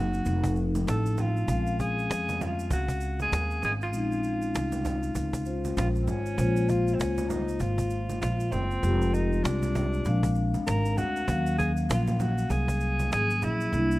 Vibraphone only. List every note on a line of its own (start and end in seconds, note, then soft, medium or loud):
0.00 0.25 F#3 medium
0.00 0.22 A#3 medium
0.00 0.23 C4 medium
0.00 0.24 D#4 medium
0.24 1.45 A3 medium
0.24 1.46 C4 medium
0.24 1.46 D#4 medium
0.28 1.47 F3 medium
1.47 3.88 G#3 medium
1.47 3.89 C4 medium
1.47 3.90 C#4 medium
1.51 3.90 F5 medium
3.91 5.42 G#3 medium
3.91 5.43 C4 medium
3.91 5.44 C#4 medium
3.96 5.45 D#4 medium
5.45 6.35 G#3 medium
5.45 6.38 C#4 medium
5.45 6.39 F4 medium
5.45 6.36 C5 soft
6.36 8.78 G#3 medium
6.36 8.80 A#3 medium
6.36 8.79 C5 medium
6.40 8.80 F4 medium
8.81 10.02 G#3 medium
8.81 10.03 C4 medium
8.81 10.03 F4 medium
8.85 10.04 G4 medium
10.03 11.24 G#3 medium
10.03 11.25 C4 medium
10.03 11.26 D4 medium
10.08 11.27 F5 medium
11.26 13.07 F#3 medium
11.26 13.08 A#3 medium
11.26 13.08 C#4 medium
11.30 13.09 F5 medium
13.11 13.19 F3 soft
13.11 13.72 A#3 soft
13.11 13.73 C#4 soft
13.11 13.74 G#4 soft
13.17 13.76 F#3 soft
13.72 13.99 G3 medium
13.72 13.99 A#3 medium
13.72 13.99 D4 medium
13.76 13.99 E4 medium